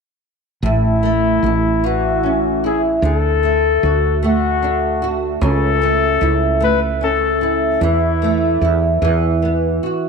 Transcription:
0.62 fretless electric bass A1, nylon-string guitar A2, flugelhorn E4
1.03 nylon-string guitar A3
1.43 fretless electric bass A1, nylon-string guitar E4
1.84 nylon-string guitar E3, flugelhorn F#4
2.23 nylon-string guitar C#4
2.64 nylon-string guitar E4, flugelhorn G#4
3.02 fretless electric bass D2, nylon-string guitar D3, flugelhorn A4
3.43 nylon-string guitar A3
3.83 fretless electric bass D2, nylon-string guitar F#4
4.23 nylon-string guitar A3, flugelhorn F#4
4.62 nylon-string guitar D4
5.02 nylon-string guitar F#4
5.41 fretless electric bass C#2, nylon-string guitar C#3, flugelhorn A4
5.82 nylon-string guitar A3
6.21 fretless electric bass C#2, nylon-string guitar E4
6.60 nylon-string guitar A3, flugelhorn B4
7.01 nylon-string guitar C#4, flugelhorn A4
7.41 nylon-string guitar E4
7.81 fretless electric bass E2, nylon-string guitar E3, flugelhorn E4
8.22 nylon-string guitar A3
8.61 fretless electric bass E2, nylon-string guitar E4
9.02 fretless electric bass E2, nylon-string guitar E3
9.42 nylon-string guitar B3
9.83 nylon-string guitar F#4

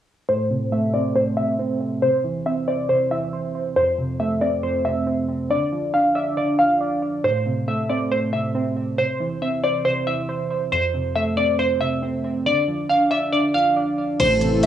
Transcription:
0.28 synth keys A2, synth pluck C5
0.50 synth keys C3
0.72 synth keys A3, synth pluck E5
0.94 synth keys C4, synth pluck D5
1.15 synth keys A2, synth pluck C5
1.37 synth keys C3, synth pluck E5
1.59 synth keys C4
1.81 synth keys C4
2.02 synth keys C3, synth pluck C5
2.24 synth keys E3
2.46 synth keys C4, synth pluck E5
2.68 synth keys C5, synth pluck D5
2.89 synth keys C3, synth pluck C5
3.11 synth keys E3, synth pluck E5
3.33 synth keys C5
3.55 synth keys C5
3.76 synth keys F2, synth pluck C5
3.98 synth keys C3
4.20 synth keys A3, synth pluck E5
4.41 synth keys C4, synth pluck D5
4.63 synth keys F2, synth pluck C5
4.85 synth keys C3, synth pluck E5
5.07 synth keys C4
5.28 synth keys C4
5.50 synth keys D3, synth pluck D5
5.72 synth keys F3
5.94 synth keys D4, synth pluck F5
6.15 synth keys D5, synth pluck E5
6.37 synth keys D3, synth pluck D5
6.59 synth keys F3, synth pluck F5
6.81 synth keys D5
7.02 synth keys D5
7.24 synth keys A2, synth pluck C5
7.46 synth keys C3
7.68 synth keys A3, synth pluck E5
7.89 synth keys C4, synth pluck D5
8.11 synth keys A2, synth pluck C5
8.33 synth keys C3, synth pluck E5
8.55 synth keys C4
8.77 synth keys C4
8.98 synth keys C3, synth pluck C5
9.20 synth keys E3
9.42 synth keys C4, synth pluck E5
9.64 synth keys C5, synth pluck D5
9.85 synth keys C3, synth pluck C5
10.07 synth keys E3, synth pluck E5
10.29 synth keys C5
10.51 synth keys C5
10.72 synth keys F2, synth pluck C5
10.94 synth keys C3
11.16 synth keys A3, synth pluck E5
11.37 synth keys C4, synth pluck D5
11.59 synth keys F2, synth pluck C5
11.81 synth keys C3, synth pluck E5
12.02 synth keys C4
12.24 synth keys C4
12.46 synth keys D3, synth pluck D5
12.68 synth keys F3
12.89 synth keys D4, synth pluck F5
13.11 synth keys D5, synth pluck E5
13.33 synth keys D3, synth pluck D5
13.54 synth keys F3, synth pluck F5
13.76 synth keys D5
13.98 synth keys D5
14.20 808-style bass A1, synth keys A2, analog synth pad E3 A3 C4 A4, synth pluck C5, closed hi-hat, crash
14.41 synth keys C3, closed hi-hat
14.63 closed hi-hat

